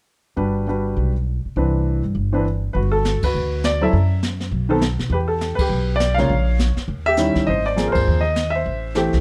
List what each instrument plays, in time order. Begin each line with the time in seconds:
0.36 upright bass G1, grand piano G3 D4 F#4 B4
0.67 grand piano G3 D4 F#4 B4
0.97 upright bass B1
1.45 muted upright bass stroke
1.56 upright bass C2, grand piano E3 C4 D4 B4
2.03 upright bass G2
2.15 upright bass G1
2.33 grand piano E3 C4 D4 B4
2.73 upright bass G1, grand piano F#4 B4, brush sweep
2.92 grand piano A4
3.05 snare, hi-hat pedal
3.22 grand piano F#4 B4, muted upright bass stroke, kick, ride
3.34 upright bass D2, brush sweep
3.64 grand piano D5, snare, hi-hat pedal
3.81 grand piano F#3 C4 E4 A4 E5
3.93 upright bass F#2, brush sweep
4.23 snare, hi-hat pedal
4.40 snare
4.51 upright bass B1, brush sweep
4.69 grand piano D#3 B3 C4 A4
4.81 snare, hi-hat pedal
4.99 upright bass B2, snare
5.10 upright bass E2, grand piano B4, brush sweep
5.14 grand piano G4
5.28 grand piano A4
5.41 snare, hi-hat pedal
5.55 grand piano B4, muted upright bass stroke, kick, ride
5.61 grand piano G4
5.69 upright bass B1, brush sweep
5.96 grand piano D5
6.00 snare, hi-hat pedal
6.14 grand piano C#3 F5, snare
6.18 grand piano G#3 A#3 F4 C#5
6.29 upright bass A#1, brush sweep
6.59 snare, hi-hat pedal
6.77 muted upright bass stroke, snare
6.88 upright bass D#2, brush sweep
7.06 grand piano G4 E5
7.17 grand piano D#3 G3 C#4 E4, snare, hi-hat pedal
7.35 muted upright bass stroke, kick, snare
7.47 upright bass G#1, grand piano C5 D#5, brush sweep
7.66 grand piano D5
7.76 grand piano F3 A#3 C4 G#4, snare, hi-hat pedal
7.88 grand piano A#4
7.92 upright bass G1, grand piano C5, kick, ride
8.07 upright bass D#2, brush sweep
8.21 grand piano D#5
8.36 snare, hi-hat pedal
8.50 grand piano E5
8.55 grand piano C5
8.66 upright bass A1, brush sweep
8.95 grand piano E3 A3 C4 G4, snare, hi-hat pedal
9.13 upright bass C2, snare